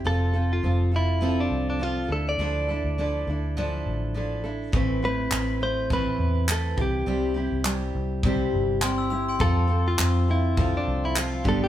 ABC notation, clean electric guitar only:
X:1
M:4/4
L:1/16
Q:"Swing 16ths" 1/4=102
K:Flyd
V:1 name="Clean electric guitar"
A3 F3 E3 D2 D F2 A d- | d8- d3 z4 z | z2 B4 c2 B4 A2 G2- | G4 z12 |
A3 F3 E3 D2 E F2 A G |]